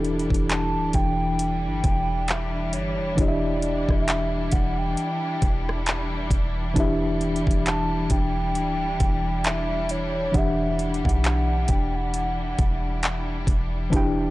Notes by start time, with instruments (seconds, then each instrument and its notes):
Already playing: 808-style bass E1, tine electric piano E3 D4 E4 G4 A4, string section E3 G3 D4 E4
0.05 closed hi-hat
0.19 closed hi-hat
0.30 808-style bass E1, kick, closed hi-hat
0.50 soft synth lead A5, clap, closed hi-hat
0.76 808-style bass D1
0.93 808-style bass E1, soft synth lead G5, kick, closed hi-hat
1.39 closed hi-hat
1.65 808-style bass G1
1.84 808-style bass E1, kick, closed hi-hat
2.28 soft synth lead E5, clap, closed hi-hat
2.73 808-style bass G1, soft synth lead C#5, closed hi-hat
2.99 808-style bass E1
3.16 808-style bass E1, tine electric piano E3 D4 E4, soft synth lead C#5, kick, closed hi-hat
3.20 tine electric piano G4 D#5
3.28 soft synth lead D5, tine electric piano E5
3.62 closed hi-hat
3.89 808-style bass E1, soft synth lead E5, kick, cross-stick
4.08 clap, closed hi-hat
4.52 808-style bass E1, soft synth lead F#5, kick, closed hi-hat
4.78 soft synth lead G5
4.97 closed hi-hat
5.42 808-style bass E1, kick, closed hi-hat
5.69 cross-stick
5.86 clap, closed hi-hat
6.31 808-style bass E1, kick, closed hi-hat
6.74 808-style bass E1, tine electric piano E3 D4 E4, kick, closed hi-hat
6.79 tine electric piano G4 E5
7.21 closed hi-hat
7.36 closed hi-hat
7.47 808-style bass E1, kick, closed hi-hat
7.66 soft synth lead A5, clap, closed hi-hat
8.10 808-style bass E1, soft synth lead G5, kick, closed hi-hat
8.55 808-style bass D1, closed hi-hat
9.00 808-style bass E1, kick, closed hi-hat
9.44 soft synth lead E5, clap, closed hi-hat
9.89 soft synth lead C#5, closed hi-hat
10.32 808-style bass E1, tine electric piano E3 D4 F#5, soft synth lead E5, kick, closed hi-hat
10.37 tine electric piano G4 E5
10.79 closed hi-hat
10.94 closed hi-hat
11.05 808-style bass B1, soft synth lead F#5, kick, closed hi-hat
11.24 clap, closed hi-hat
11.68 808-style bass E1, soft synth lead G5, kick, closed hi-hat
11.96 soft synth lead F#5
12.14 closed hi-hat
12.58 808-style bass E1, kick, closed hi-hat
13.03 clap, closed hi-hat
13.47 808-style bass E1, kick, closed hi-hat
13.90 808-style bass E1, tine electric piano E3 D4 E4, kick, closed hi-hat
13.95 tine electric piano G4 G5